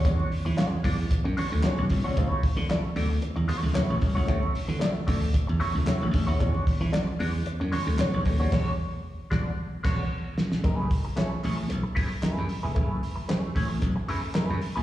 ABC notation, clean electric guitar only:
X:1
M:4/4
L:1/16
Q:1/4=113
K:F#m
V:1 name="Clean electric guitar"
[G,DFc]2 z2 [G,DFd]2 [G,DFd] z3 [G,DFc] z [G,DFc] z2 [G,DFc] | [A,EFc]2 z2 [A,EFd] z [A,EFd] z3 [A,EFc]2 [A,EFc] z2 [A,EFc] | [A,EFc]2 z2 [A,EFd] z [A,EFd] z3 [A,EFc] z [A,EFc] z2 [A,EFc] | [G,DFc]2 z2 [G,DFd] z [G,DFd] z3 [G,DFc] z [G,DFc] z2 [G,DFc] |
[G,DFc]2 z4 [G,DFd]2 z2 [G,DFc]2 z4 | [A,EGB]2 z2 [A,EGc] z [A,EGc] z3 [A,EGB] z [A,EGB]2 z [A,EGB] | [A,EGB]2 z2 [A,EGc]2 [A,EGc] z3 [A,EGB] z [A,EGB]2 z [A,EGB] |]